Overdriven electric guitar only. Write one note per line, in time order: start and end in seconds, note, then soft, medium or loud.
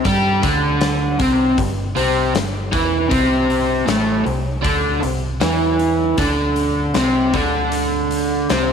0.04 0.42 G3 medium
0.04 0.42 G4 loud
0.42 1.18 D3 medium
0.42 1.18 D4 medium
1.19 1.56 C3 medium
1.19 1.57 C4 loud
1.58 1.89 G2 medium
1.96 2.33 C3 medium
1.96 2.33 C4 loud
2.34 2.65 G2 medium
2.72 3.09 E3 medium
2.72 3.09 E4 loud
3.09 3.85 C3 medium
3.09 3.86 C4 loud
3.86 4.24 A2 medium
3.86 4.24 A3 loud
4.25 4.56 C3 medium
4.62 5.00 D3 medium
4.62 5.01 D4 medium
5.02 5.33 C3 medium
5.40 6.16 E3 medium
5.40 6.17 E4 medium
6.18 6.94 D3 medium
6.18 6.94 D4 loud
6.95 7.32 C3 medium
6.95 7.33 C4 loud
7.34 8.49 D3 loud
7.34 8.49 D4 medium
8.50 8.73 C3 medium
8.50 8.73 C4 medium